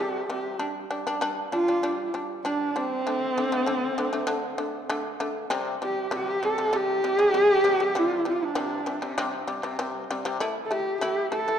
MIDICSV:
0, 0, Header, 1, 3, 480
1, 0, Start_track
1, 0, Tempo, 612870
1, 474, Time_signature, 4, 2, 24, 8
1, 9076, End_track
2, 0, Start_track
2, 0, Title_t, "Horsehead fiddle"
2, 0, Program_c, 0, 110
2, 0, Note_on_c, 0, 67, 80
2, 223, Note_off_c, 0, 67, 0
2, 228, Note_on_c, 0, 67, 70
2, 454, Note_off_c, 0, 67, 0
2, 1197, Note_on_c, 0, 65, 106
2, 1647, Note_off_c, 0, 65, 0
2, 1918, Note_on_c, 0, 62, 83
2, 2161, Note_on_c, 0, 60, 104
2, 2173, Note_off_c, 0, 62, 0
2, 3843, Note_off_c, 0, 60, 0
2, 4575, Note_on_c, 0, 67, 82
2, 4792, Note_off_c, 0, 67, 0
2, 4812, Note_on_c, 0, 67, 96
2, 5054, Note_on_c, 0, 69, 95
2, 5066, Note_off_c, 0, 67, 0
2, 5291, Note_on_c, 0, 67, 118
2, 5303, Note_off_c, 0, 69, 0
2, 5628, Note_off_c, 0, 67, 0
2, 5628, Note_on_c, 0, 68, 118
2, 5722, Note_off_c, 0, 68, 0
2, 5722, Note_on_c, 0, 67, 118
2, 6254, Note_on_c, 0, 65, 98
2, 6266, Note_off_c, 0, 67, 0
2, 6480, Note_off_c, 0, 65, 0
2, 6485, Note_on_c, 0, 65, 82
2, 6616, Note_on_c, 0, 62, 82
2, 6628, Note_off_c, 0, 65, 0
2, 7324, Note_off_c, 0, 62, 0
2, 8342, Note_on_c, 0, 69, 74
2, 8391, Note_on_c, 0, 67, 92
2, 8403, Note_off_c, 0, 69, 0
2, 8620, Note_off_c, 0, 67, 0
2, 8624, Note_on_c, 0, 67, 90
2, 8850, Note_off_c, 0, 67, 0
2, 8878, Note_on_c, 0, 69, 112
2, 9076, Note_off_c, 0, 69, 0
2, 9076, End_track
3, 0, Start_track
3, 0, Title_t, "Shamisen"
3, 0, Program_c, 1, 106
3, 0, Note_on_c, 1, 48, 73
3, 0, Note_on_c, 1, 55, 73
3, 184, Note_off_c, 1, 48, 0
3, 184, Note_off_c, 1, 55, 0
3, 231, Note_on_c, 1, 55, 70
3, 235, Note_on_c, 1, 48, 67
3, 425, Note_off_c, 1, 55, 0
3, 426, Note_off_c, 1, 48, 0
3, 465, Note_on_c, 1, 55, 79
3, 466, Note_on_c, 1, 62, 65
3, 662, Note_off_c, 1, 62, 0
3, 663, Note_off_c, 1, 55, 0
3, 709, Note_on_c, 1, 55, 75
3, 710, Note_on_c, 1, 62, 70
3, 807, Note_off_c, 1, 62, 0
3, 808, Note_off_c, 1, 55, 0
3, 836, Note_on_c, 1, 55, 74
3, 839, Note_on_c, 1, 62, 74
3, 932, Note_off_c, 1, 55, 0
3, 933, Note_off_c, 1, 62, 0
3, 949, Note_on_c, 1, 55, 90
3, 956, Note_on_c, 1, 62, 89
3, 1146, Note_off_c, 1, 55, 0
3, 1147, Note_off_c, 1, 62, 0
3, 1193, Note_on_c, 1, 55, 68
3, 1198, Note_on_c, 1, 62, 69
3, 1292, Note_off_c, 1, 55, 0
3, 1292, Note_off_c, 1, 62, 0
3, 1317, Note_on_c, 1, 55, 60
3, 1321, Note_on_c, 1, 62, 55
3, 1414, Note_off_c, 1, 55, 0
3, 1414, Note_off_c, 1, 62, 0
3, 1435, Note_on_c, 1, 62, 80
3, 1439, Note_on_c, 1, 55, 81
3, 1629, Note_off_c, 1, 62, 0
3, 1631, Note_off_c, 1, 55, 0
3, 1676, Note_on_c, 1, 55, 62
3, 1682, Note_on_c, 1, 62, 56
3, 1870, Note_off_c, 1, 55, 0
3, 1871, Note_off_c, 1, 62, 0
3, 1917, Note_on_c, 1, 55, 77
3, 1923, Note_on_c, 1, 62, 75
3, 2111, Note_off_c, 1, 55, 0
3, 2112, Note_off_c, 1, 62, 0
3, 2159, Note_on_c, 1, 55, 70
3, 2165, Note_on_c, 1, 62, 65
3, 2352, Note_off_c, 1, 55, 0
3, 2353, Note_off_c, 1, 62, 0
3, 2402, Note_on_c, 1, 50, 74
3, 2406, Note_on_c, 1, 57, 76
3, 2593, Note_off_c, 1, 50, 0
3, 2594, Note_off_c, 1, 57, 0
3, 2643, Note_on_c, 1, 50, 64
3, 2647, Note_on_c, 1, 57, 71
3, 2738, Note_off_c, 1, 50, 0
3, 2740, Note_off_c, 1, 57, 0
3, 2758, Note_on_c, 1, 50, 74
3, 2761, Note_on_c, 1, 57, 76
3, 2856, Note_off_c, 1, 50, 0
3, 2856, Note_off_c, 1, 57, 0
3, 2870, Note_on_c, 1, 50, 82
3, 2877, Note_on_c, 1, 57, 90
3, 3068, Note_off_c, 1, 50, 0
3, 3070, Note_off_c, 1, 57, 0
3, 3117, Note_on_c, 1, 50, 79
3, 3118, Note_on_c, 1, 57, 67
3, 3214, Note_off_c, 1, 57, 0
3, 3216, Note_off_c, 1, 50, 0
3, 3232, Note_on_c, 1, 57, 73
3, 3236, Note_on_c, 1, 50, 68
3, 3333, Note_off_c, 1, 57, 0
3, 3335, Note_off_c, 1, 50, 0
3, 3343, Note_on_c, 1, 50, 95
3, 3344, Note_on_c, 1, 57, 90
3, 3544, Note_off_c, 1, 57, 0
3, 3545, Note_off_c, 1, 50, 0
3, 3588, Note_on_c, 1, 50, 68
3, 3589, Note_on_c, 1, 57, 70
3, 3786, Note_off_c, 1, 57, 0
3, 3787, Note_off_c, 1, 50, 0
3, 3834, Note_on_c, 1, 57, 104
3, 3838, Note_on_c, 1, 50, 93
3, 4030, Note_off_c, 1, 57, 0
3, 4032, Note_off_c, 1, 50, 0
3, 4074, Note_on_c, 1, 50, 76
3, 4077, Note_on_c, 1, 57, 76
3, 4270, Note_off_c, 1, 50, 0
3, 4271, Note_off_c, 1, 57, 0
3, 4308, Note_on_c, 1, 48, 96
3, 4312, Note_on_c, 1, 55, 94
3, 4507, Note_off_c, 1, 48, 0
3, 4508, Note_off_c, 1, 55, 0
3, 4557, Note_on_c, 1, 48, 65
3, 4563, Note_on_c, 1, 55, 62
3, 4751, Note_off_c, 1, 48, 0
3, 4753, Note_off_c, 1, 55, 0
3, 4787, Note_on_c, 1, 48, 91
3, 4794, Note_on_c, 1, 55, 86
3, 4986, Note_off_c, 1, 48, 0
3, 4988, Note_off_c, 1, 55, 0
3, 5034, Note_on_c, 1, 48, 68
3, 5040, Note_on_c, 1, 55, 69
3, 5134, Note_off_c, 1, 48, 0
3, 5135, Note_off_c, 1, 55, 0
3, 5154, Note_on_c, 1, 48, 60
3, 5158, Note_on_c, 1, 55, 62
3, 5254, Note_off_c, 1, 48, 0
3, 5254, Note_off_c, 1, 55, 0
3, 5269, Note_on_c, 1, 48, 85
3, 5273, Note_on_c, 1, 55, 92
3, 5467, Note_off_c, 1, 48, 0
3, 5469, Note_off_c, 1, 55, 0
3, 5514, Note_on_c, 1, 48, 63
3, 5518, Note_on_c, 1, 55, 68
3, 5613, Note_off_c, 1, 48, 0
3, 5615, Note_off_c, 1, 55, 0
3, 5629, Note_on_c, 1, 48, 64
3, 5633, Note_on_c, 1, 55, 67
3, 5730, Note_off_c, 1, 55, 0
3, 5731, Note_off_c, 1, 48, 0
3, 5750, Note_on_c, 1, 48, 82
3, 5754, Note_on_c, 1, 55, 87
3, 5947, Note_off_c, 1, 48, 0
3, 5947, Note_off_c, 1, 55, 0
3, 5984, Note_on_c, 1, 48, 80
3, 5987, Note_on_c, 1, 55, 76
3, 6088, Note_off_c, 1, 48, 0
3, 6088, Note_off_c, 1, 55, 0
3, 6110, Note_on_c, 1, 48, 58
3, 6112, Note_on_c, 1, 55, 57
3, 6210, Note_off_c, 1, 55, 0
3, 6211, Note_off_c, 1, 48, 0
3, 6228, Note_on_c, 1, 48, 87
3, 6232, Note_on_c, 1, 55, 87
3, 6425, Note_off_c, 1, 48, 0
3, 6426, Note_off_c, 1, 55, 0
3, 6464, Note_on_c, 1, 48, 68
3, 6469, Note_on_c, 1, 55, 65
3, 6663, Note_off_c, 1, 48, 0
3, 6664, Note_off_c, 1, 55, 0
3, 6699, Note_on_c, 1, 48, 93
3, 6702, Note_on_c, 1, 55, 99
3, 6899, Note_off_c, 1, 48, 0
3, 6901, Note_off_c, 1, 55, 0
3, 6941, Note_on_c, 1, 48, 71
3, 6946, Note_on_c, 1, 55, 74
3, 7045, Note_off_c, 1, 48, 0
3, 7046, Note_off_c, 1, 55, 0
3, 7065, Note_on_c, 1, 48, 67
3, 7069, Note_on_c, 1, 55, 60
3, 7167, Note_off_c, 1, 48, 0
3, 7167, Note_off_c, 1, 55, 0
3, 7187, Note_on_c, 1, 48, 101
3, 7190, Note_on_c, 1, 55, 104
3, 7383, Note_off_c, 1, 55, 0
3, 7384, Note_off_c, 1, 48, 0
3, 7421, Note_on_c, 1, 48, 76
3, 7425, Note_on_c, 1, 55, 84
3, 7524, Note_off_c, 1, 48, 0
3, 7526, Note_off_c, 1, 55, 0
3, 7545, Note_on_c, 1, 48, 76
3, 7551, Note_on_c, 1, 55, 76
3, 7647, Note_off_c, 1, 48, 0
3, 7647, Note_off_c, 1, 55, 0
3, 7667, Note_on_c, 1, 48, 97
3, 7669, Note_on_c, 1, 55, 96
3, 7862, Note_off_c, 1, 48, 0
3, 7862, Note_off_c, 1, 55, 0
3, 7915, Note_on_c, 1, 48, 88
3, 7917, Note_on_c, 1, 55, 79
3, 8009, Note_off_c, 1, 55, 0
3, 8010, Note_off_c, 1, 48, 0
3, 8029, Note_on_c, 1, 48, 80
3, 8033, Note_on_c, 1, 55, 75
3, 8127, Note_off_c, 1, 48, 0
3, 8128, Note_off_c, 1, 55, 0
3, 8148, Note_on_c, 1, 57, 96
3, 8152, Note_on_c, 1, 64, 90
3, 8342, Note_off_c, 1, 57, 0
3, 8343, Note_off_c, 1, 64, 0
3, 8385, Note_on_c, 1, 57, 72
3, 8392, Note_on_c, 1, 64, 67
3, 8580, Note_off_c, 1, 57, 0
3, 8581, Note_off_c, 1, 64, 0
3, 8626, Note_on_c, 1, 57, 86
3, 8631, Note_on_c, 1, 64, 88
3, 8820, Note_off_c, 1, 57, 0
3, 8821, Note_off_c, 1, 64, 0
3, 8864, Note_on_c, 1, 64, 79
3, 8867, Note_on_c, 1, 57, 71
3, 8963, Note_off_c, 1, 64, 0
3, 8964, Note_off_c, 1, 57, 0
3, 8989, Note_on_c, 1, 57, 60
3, 8994, Note_on_c, 1, 64, 61
3, 9076, Note_off_c, 1, 57, 0
3, 9076, Note_off_c, 1, 64, 0
3, 9076, End_track
0, 0, End_of_file